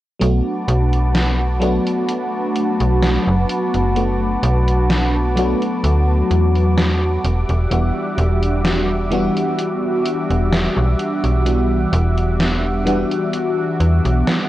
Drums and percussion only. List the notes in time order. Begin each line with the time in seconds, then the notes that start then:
0.21 closed hi-hat
0.68 closed hi-hat
0.93 closed hi-hat
1.15 snare, closed hi-hat
1.62 closed hi-hat
1.87 closed hi-hat
2.09 closed hi-hat
2.56 closed hi-hat
2.80 closed hi-hat
3.03 snare, closed hi-hat
3.49 closed hi-hat
3.74 closed hi-hat
3.96 closed hi-hat
4.43 closed hi-hat
4.68 closed hi-hat
4.90 snare, closed hi-hat
5.37 closed hi-hat
5.62 closed hi-hat
5.84 closed hi-hat
6.31 closed hi-hat
6.55 closed hi-hat
6.77 snare, closed hi-hat
7.24 closed hi-hat
7.49 closed hi-hat
7.71 closed hi-hat
8.18 closed hi-hat
8.43 closed hi-hat
8.65 snare, closed hi-hat
9.12 closed hi-hat
9.37 closed hi-hat
9.59 closed hi-hat
10.06 closed hi-hat
10.30 closed hi-hat
10.52 snare, closed hi-hat
10.99 closed hi-hat
11.24 closed hi-hat
11.46 closed hi-hat
11.93 closed hi-hat
12.18 closed hi-hat
12.40 snare, closed hi-hat
12.87 closed hi-hat
13.11 closed hi-hat
13.34 closed hi-hat
13.80 closed hi-hat
14.05 closed hi-hat
14.27 snare, closed hi-hat